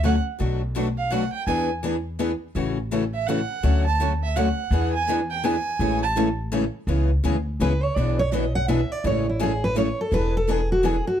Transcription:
Already playing: upright bass D2
0.03 steel-string acoustic guitar D3 F#3 A3 C#4 F#4 A4, violin F#5
0.40 upright bass B1, steel-string acoustic guitar B2 F#3 A3 D4 F#4 B4
0.76 steel-string acoustic guitar B2 F#3 A3 D4 F#4 B4
0.98 violin F5
1.12 steel-string acoustic guitar B2 F#3 A3 D4 F#4 B4, violin F#5
1.33 violin G5
1.46 upright bass E2, steel-string acoustic guitar E3 B3 D4 G#4, violin G#5
1.51 steel-string acoustic guitar B4
1.85 steel-string acoustic guitar E3 B3 D4 G#4 B4
2.19 steel-string acoustic guitar E3 B3 D4 G#4 B4
2.55 upright bass A1, steel-string acoustic guitar C#3 E3 A3 C#4 F#4 A4
2.91 steel-string acoustic guitar C#3 E3 A3 C#4 F#4 A4
3.14 violin E5
3.27 steel-string acoustic guitar C#3 E3 A3 C#4 F#4 A4, violin F#5
3.63 upright bass D2, steel-string acoustic guitar D3 F#3 A3 C#4 F#4 A4
3.85 violin A5
4.01 steel-string acoustic guitar D3 F#3 A3 C#4 F#4 A4
4.23 violin E5
4.36 steel-string acoustic guitar D3 F#3 A3 C#4 F#4 A4, violin F#5
4.71 upright bass E2, steel-string acoustic guitar E3 B3 D4 G#4 B4
4.94 violin G#5
5.08 steel-string acoustic guitar E3 B3 D4 G#4 B4
5.30 violin G5
5.44 steel-string acoustic guitar E3 B3 D4 G#4 B4, violin G#5
5.79 upright bass A1, steel-string acoustic guitar C#3 E3 G#3 A3 C#4 E4 G#4 A4
6.02 violin A5
6.16 steel-string acoustic guitar C#3 E3 G#3 A3 C#4 E4 G#4 A4
6.52 steel-string acoustic guitar C#3 E3 G#3 A3 C#4 E4 G#4 A4
6.87 upright bass C#2, steel-string acoustic guitar C#3 E3 G#3 B3 C#4 E4 G#4
7.24 upright bass D2, steel-string acoustic guitar C#3 E3 G#3 B3 C#4 E4 G#4
7.60 upright bass C#2, steel-string acoustic guitar C#3 E3 G#3 B3 C#4 E4 G#4 B4
7.83 steel-string acoustic guitar C#5
7.96 upright bass B1, steel-string acoustic guitar B2 E3 B3 D4 G#4 B4 D5
8.19 steel-string acoustic guitar C#5
8.31 steel-string acoustic guitar B2 E3 B3 D4 G#4 B4 D#5
8.55 steel-string acoustic guitar F#5
8.68 steel-string acoustic guitar B2 E3 B3 D4 G#4 B4 E5
8.92 steel-string acoustic guitar D5
9.04 upright bass A1, steel-string acoustic guitar C#3 E3 G#3 A3 C#4 E4 G#4 A4 C#5
9.29 steel-string acoustic guitar E4
9.40 steel-string acoustic guitar C#3 E3 G#3 A3 C#4 E4 G#4 A4
9.64 steel-string acoustic guitar B4
9.75 steel-string acoustic guitar C#3 E3 G#3 A3 C#4 E4 G#4 A4 C#5
10.01 steel-string acoustic guitar A4
10.11 upright bass E1, steel-string acoustic guitar E3 B3 D4 G#4 B4
10.37 steel-string acoustic guitar A4
10.47 steel-string acoustic guitar E3 B3 D4 G#4 B4
10.72 steel-string acoustic guitar F#4
10.84 steel-string acoustic guitar E3 B3 D4 G#4 B4
11.07 steel-string acoustic guitar F#4

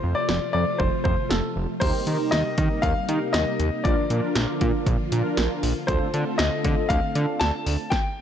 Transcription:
Already playing: string machine C3 F3 A3 F4, grand piano C5
0.04 analog synth bass F2
0.15 grand piano D5
0.29 analog synth bass F1, snare
0.53 analog synth bass F2, grand piano D5
0.78 analog synth bass F1, grand piano C5, kick
1.04 analog synth bass F2, grand piano C5, kick
1.29 analog synth bass F1, grand piano A4, snare
1.56 analog synth bass F1
1.80 analog synth bass D#2, string machine C3 G3 A#3 D#4, analog polysynth D#4 G4 A#4, grand piano C5, kick, closed hi-hat, crash
2.07 analog synth bass D#3, analog polysynth D#4 G4 A#4, closed hi-hat
2.31 analog synth bass D#2, grand piano D#5, snare, closed hi-hat
2.58 analog synth bass D#3, kick, closed hi-hat
2.82 analog synth bass D#2, grand piano F5, kick, closed hi-hat
3.09 analog synth bass D#3, analog polysynth D#4 G4 A#4, closed hi-hat
3.33 analog synth bass D#2, grand piano D#5, snare, closed hi-hat
3.60 analog synth bass D#2, closed hi-hat
3.84 analog synth bass A#1, string machine D3 F3 F4, analog polysynth D4 F4 A#4, grand piano D5, kick, closed hi-hat
4.10 analog synth bass A#2, analog polysynth D4 F4 A#4, closed hi-hat
4.35 analog synth bass A#1, snare, closed hi-hat
4.61 analog synth bass A#2, kick, closed hi-hat
4.87 analog synth bass A#1, kick, closed hi-hat
5.12 analog synth bass A#2, analog polysynth D4 F4 A#4, closed hi-hat
5.37 analog synth bass A#1, snare, closed hi-hat
5.63 analog synth bass A#1, open hi-hat
5.87 analog synth bass D2, string machine D3 A3 C4, analog polysynth D4 F4 A4, grand piano C5, kick, closed hi-hat
6.14 analog polysynth D3 F4 A4, analog synth bass D3, closed hi-hat
6.38 analog synth bass D2, grand piano D#5, snare, closed hi-hat
6.64 analog synth bass D3, kick, closed hi-hat
6.89 analog synth bass D2, grand piano F5, kick, closed hi-hat
7.15 analog synth bass D3, analog polysynth D4 F4 A4, closed hi-hat
7.40 analog synth bass D2, grand piano A5, snare, closed hi-hat
7.66 analog synth bass D2, open hi-hat
7.90 grand piano G5, kick, snare

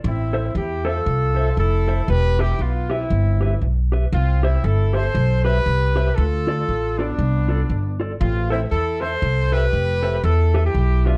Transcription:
0.04 upright bass A1, horn section C4 E4
0.33 clean electric guitar A4 C5 E5
0.55 upright bass E2, horn section E4 G4
0.85 horn section F4 A4, clean electric guitar A4 C5 E5
1.06 upright bass C2
1.35 clean electric guitar A4 C5 E5
1.57 upright bass F1, horn section E4 A4
1.88 clean electric guitar A4 C5 E5
2.08 upright bass E1, horn section G4 B4
2.39 horn section E4 G4, clean electric guitar G4 B4 E5
2.59 upright bass B1, horn section B3 F4
2.90 horn section C4 E4, clean electric guitar G4 B4 E5
3.10 upright bass G1
3.41 clean electric guitar G4 B4 E5
3.61 upright bass B1, muted clean electric guitar stroke
3.92 clean electric guitar G4 B4 E5
4.12 upright bass C2, horn section C4 F4
4.43 horn section C4 E4, clean electric guitar G4 C5 E5
4.64 upright bass G1, horn section E4 A4
4.93 clean electric guitar G4 C5 E5, horn section A4 C5
5.15 upright bass B1
5.44 clean electric guitar G4 C5 E5, horn section G4 B4
5.66 upright bass C2
5.96 clean electric guitar G4 C5 E5
6.16 upright bass D2, horn section F4 A4
6.47 clean electric guitar F4 A4 D5
6.68 upright bass A1
6.99 horn section B3 D4, clean electric guitar F4 A4 D5
7.18 upright bass C2
7.48 clean electric guitar F4 A4 D5
7.69 upright bass G1, muted clean electric guitar stroke
8.00 clean electric guitar F4 A4 D5
8.21 upright bass A1, horn section C4 F4
8.50 horn section C4 E4, clean electric guitar A4 C5 E5
8.71 upright bass E2, horn section E4 A4
9.01 clean electric guitar A4 C5 E5, horn section A4 C5
9.22 upright bass C2
9.52 horn section G4 B4, clean electric guitar A4 C5 E5
9.73 upright bass F1
10.03 clean electric guitar A4 C5 E5
10.24 upright bass E2, horn section E4 A4
10.54 clean electric guitar G4 B4 E5
10.66 horn section E4 G4
10.74 upright bass B1
11.06 horn section D4 F4, clean electric guitar G4 B4 E5

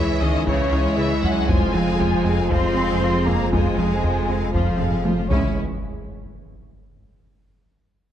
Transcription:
Already playing: analog synth bass C#2, double bass section C#2, sub bass C#2, synth arpeggio sound E3, cello section E3, viola section E3 E4, analog synth pad E3 G#3 G#4 C#5, french horn section G#3 E4, violin section E4 C#5 E5
0.21 analog synth bass C#2, cello section D#3, synth arpeggio sound E3, viola section G#3 C#4, violin section G#4 D#5 E5
0.46 analog synth bass C#2, cello section C#3, synth arpeggio sound C#3, viola section E3 E4, violin section E4 C#5, taiko
0.71 analog synth bass C#2, viola section G#3 C#4, synth arpeggio sound C#4, violin section G#4 E5, taiko rim
0.97 analog synth bass C#3, cello section E3, viola section E3 E4, violin section E4 C#5 E5
1.23 analog synth bass C#2, cello section F#3, viola section G#3 C#4, synth arpeggio sound C#4, violin section G#4 E5 F#5, taiko low
1.48 sub bass F1, analog synth bass F2, double bass section F2, viola section F3 F4, synth arpeggio sound F3, analog synth pad F3 G#3 G#4 C5, cello section G#3, french horn section G#3 F4, violin section F4 C5 G#5, taiko
1.74 analog synth bass F3, viola section G#3 C4, synth arpeggio sound C4, violin section G#4 F5, taiko low
2.00 analog synth bass F2, viola section F3 F4, synth arpeggio sound G#3, violin section F4 C5, taiko low
2.25 analog synth bass F2, viola section G#3 C4, synth arpeggio sound G#3, violin section G#4 F5
2.50 analog synth bass F2, viola section F3 F4, synth arpeggio sound F3, cello section C4, violin section F4 C5 C6, taiko
2.76 analog synth bass F2, viola section G#3 C4, synth arpeggio sound F4, violin section G#4 F5
3.01 viola section F3 F4, analog synth bass F3, violin section F4 C5
3.26 analog synth bass F2, viola section G#3 C4, cello section A#3, synth arpeggio sound F4, violin section G#4 F5 A#5, taiko low
3.52 analog synth bass F2, viola section F3 F4, synth arpeggio sound F3, cello section G#3, violin section F4 C5 G#5, taiko
3.77 analog synth bass F3, viola section G#3 C4, synth arpeggio sound C4, violin section G#4 F5, taiko low
4.03 analog synth bass F2, viola section F3 F4, synth arpeggio sound G#3, violin section F4 C5, taiko low
4.29 analog synth bass F2, viola section G#3 C4, synth arpeggio sound G#3, violin section G#4 F5
4.53 analog synth bass F2, viola section F3 F4, cello section F3, synth arpeggio sound F3, violin section F4 C5 F5, taiko
4.79 analog synth bass F2, viola section G#3 C4, synth arpeggio sound F4, violin section G#4 F5, taiko low-mid
5.05 viola section F3 F4, analog synth bass F3, violin section F4 C5, taiko high
5.29 double bass section C#2, sub bass C#2, analog synth pad E3 G#3 G#4 C#5, viola section G#3, french horn section G#3 E4, cello section C#4, violin section E4 C#5, taiko, impact

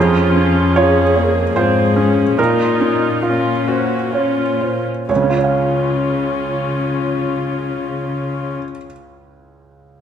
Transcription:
Already playing: cello section F2, felt piano F2 G#4, viola section C#4 F4
0.36 felt piano C#4
0.76 viola section C#4 G#4, felt piano F4 C#5
1.16 viola section A#3, felt piano C#5
1.56 cello section G#2, viola section C4 G#4, felt piano F4 C5
1.96 felt piano C#4, viola section C#4
2.38 cello section A#2, felt piano A#2 A#4, viola section D#4 F4
2.80 felt piano C#4
3.22 viola section C#4 F4, felt piano F4
3.68 viola section F#4, felt piano C5
4.13 viola section C#4 F4, felt piano C#5
4.61 felt piano C5
5.07 felt piano C#2 C#5, cello section C#3, viola section C#4 F4
5.16 felt piano C#3
5.23 felt piano C#4
5.30 felt piano F4
5.37 felt piano C#5
5.44 felt piano F5

